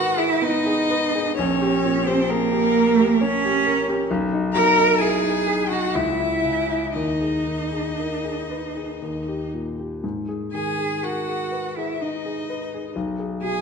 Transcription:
Already playing: G#2 D#3 F#4 G#4 A#4 B4 F#5
0.17 E4 G#4 E5
0.42 B3 D#4 D#5
0.66 G#4
0.90 B4
1.15 G#4
1.37 A#1 C#4 C#5
1.62 G4
1.85 A#2
2.06 C4 G4 C5
2.29 A#3 G#4 A#4
2.52 G4
2.76 A#4
3.00 G4
3.21 C#4 C#5
3.45 G4
3.66 A#4
3.89 G4
4.11 B1
4.33 D#4
4.52 B2 A#4 A#5
4.78 D#4
4.98 E4 G#4 G#5
5.24 D#4
5.48 G#4
5.68 D#4 F#4 F#5
5.93 C#2 E4 E5
6.20 E4
6.44 C#3
6.69 E4
6.93 D#2 D#4 D#5
7.21 G#4
7.47 D#3
7.73 G#4
7.99 A#4
8.25 G#4
8.51 B4
8.77 G#4
9.02 D#2
9.28 G4
9.54 A#2
9.79 G4
10.04 G#2
10.28 G#4
10.53 D#3 G#4 G#5
10.78 G#4
11.03 F#4 A#4 F#5
11.28 G#4
11.52 B4
11.76 E4 G#4 E5
12.01 D#4 D#5
12.25 G#4
12.50 B4
12.74 G#4
12.96 B1
13.19 G#4
13.42 B2 G#4 G#5

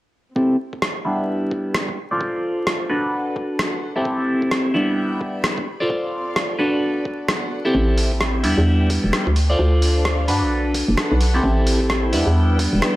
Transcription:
0.36 C4 E4 G4 A4, kick
0.42 G4
0.69 A4 E5
0.73 kick
0.82 cross-stick
1.05 G3 B3 D4 E4
1.48 B4, kick
1.74 cross-stick
1.88 kick
2.11 F4 A4 C5 D5
2.21 kick
2.51 C5 F5
2.67 cross-stick
2.90 D4 F#4 A4 B4
3.36 kick
3.56 B4 F#5, cross-stick
3.96 C4 E4 G4 A4
4.05 E4, kick
4.38 C5 G5
4.42 kick
4.51 cross-stick
4.74 G3 B3 D4 E4
4.97 D5
5.02 B5
5.21 kick
5.44 cross-stick
5.58 kick
5.67 C4
5.72 A4
5.80 F4 A4 C5 D5
5.90 kick
6.02 F5
6.36 cross-stick
6.59 D4 F#4 A4 B4
6.82 B3
7.05 kick
7.25 F#5, cross-stick
7.65 C4 E4 G4 A4
7.75 A1 C4, kick
7.98 open hi-hat
8.07 E5 G5
8.12 kick
8.21 cross-stick
8.44 E2 G3 B3 D4 E4, open hi-hat
8.58 E2
8.75 B4
8.90 kick, open hi-hat
9.04 E1
9.13 cross-stick
9.27 D2, kick
9.36 open hi-hat
9.50 F4 A4 C5 D5
9.54 A4
9.59 D2, kick
9.65 C5
9.82 open hi-hat
9.89 F5
10.05 cross-stick
10.28 G2 D4 F#4 A4 B4, open hi-hat
10.42 B1
10.74 kick, open hi-hat
10.88 F#1
10.94 B4 F#5, cross-stick
11.11 B1
11.21 open hi-hat
11.34 C4 E4 G4 A4
11.44 A1 E4, kick
11.67 open hi-hat
11.77 C5 G5, kick
11.90 cross-stick
12.13 E2 G3 B3 D4 E4, open hi-hat
12.27 E2
12.50 B4
12.55 D5
12.59 kick, open hi-hat
12.73 E1
12.82 cross-stick

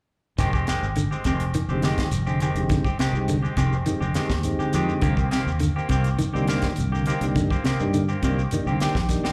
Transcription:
0.38 F1 D#3 G#3 C4 G4, muted clean electric guitar stroke, kick, snare, closed hi-hat, shekere
0.53 G#3 C4 G4, kick, shekere
0.67 D#3 G#3 C4 G4, snare, closed hi-hat, shekere
0.83 G#1, shekere
0.96 D3, closed hi-hat, shekere
1.11 G#3 C4 G4, shekere
1.24 F1 C3 D#3 G#3 C4 G4, kick, closed hi-hat, shekere
1.40 closed hi-hat, shekere
1.54 D#3, closed hi-hat, shekere
1.68 F1 D3 G#3 C4 D#4 G4, shekere
1.82 D#3 G#3 C4 G4, snare, closed hi-hat, shekere
1.98 D#3, kick, snare, closed hi-hat, shekere
2.11 F1, closed hi-hat, shekere
2.27 D3 G#3 C4 G4, shekere
2.40 D#3 G#3 C4 D#4 G4, closed hi-hat, shekere
2.55 F1 D3 G#3 C4 D#4 G4, closed hi-hat, shekere
2.69 C2 D3, kick, snare, closed hi-hat, shekere
2.85 C4 G4, kick, shekere
2.99 C3 D#3 G#3 C4 G4, muted fingered electric bass stroke, snare, closed hi-hat, shekere
3.13 C2 G#3 C4 D#4 G4, shekere
3.28 D3, closed hi-hat, shekere
3.42 G#3 C4 G4, shekere
3.57 F1 C3 D#3 G#3 C4 D#4 G4, kick, closed hi-hat, shekere
3.72 shekere
3.86 D#3 G#3 C4 D#4 G4, closed hi-hat, shekere
4.00 F1 D3 G#3 C4 G4, shekere
4.14 D#3 G#3 C4 D#4 G4, muted fingered electric bass stroke, snare, closed hi-hat, shekere
4.29 D#2 D#3, kick, snare, shekere
4.43 G#3 C4 D#4 G4, closed hi-hat, shekere
4.59 D3 G#3 G4, muted fingered electric bass stroke, shekere
4.73 F2 D#3 G#3 C4 G4, closed hi-hat, shekere
4.88 D3, shekere
5.01 C2 D3 D#3 A#3 C4 G4, kick, closed hi-hat, shekere
5.17 A#3 C4, kick, shekere
5.31 C3 D#3 A#3 C4 G4, snare, closed hi-hat, shekere
5.47 D#2, shekere
5.60 D3, closed hi-hat, shekere
5.76 A#3 C4 G4, shekere
5.89 C2 C3 D#3 A#3 C4 G4, kick, closed hi-hat, shekere
6.04 closed hi-hat, shekere
6.19 D#3, closed hi-hat, shekere
6.33 C2 D3 A#3 C4 D4 D#4 G4, shekere
6.47 D#3 A#3 C4 G4, snare, closed hi-hat, shekere
6.62 D#3, kick, snare, closed hi-hat, shekere
6.76 C2, closed hi-hat, shekere
6.92 D3 A#3 G4, muted clean electric guitar stroke, shekere
7.06 D#3 A#3 C4 D#4 G4, closed hi-hat, shekere
7.21 C2 D3 A#3 D4 D#4 G4, closed hi-hat, shekere
7.36 G2 D3, kick, closed hi-hat, shekere
7.50 A#3 C4 G4, kick, shekere
7.64 C3 D#3 A#3 C4 G4, muted fingered electric bass stroke, snare, closed hi-hat, shekere
7.80 G2 A#3 D4 D#4 G4, shekere
7.94 D3, closed hi-hat, shekere
8.08 A#3 C4 G4, shekere
8.22 C2 C3 D#3 A#3 C4 D4 D#4 G4, kick, closed hi-hat, shekere
8.39 shekere
8.51 D#3 A#3 D4 D#4 G4, closed hi-hat, shekere
8.66 C2 D3 A#3 C4 G4, shekere
8.80 D#3 A#3 C4 D4 D#4 G4, muted fingered electric bass stroke, snare, closed hi-hat, shekere
8.95 A#1 D#3, kick, snare, shekere
9.09 A#3 D4 D#4 G4, kick, snare, closed hi-hat, shekere
9.24 D3 A#3 C4 G4, muted fingered electric bass stroke, snare, shekere

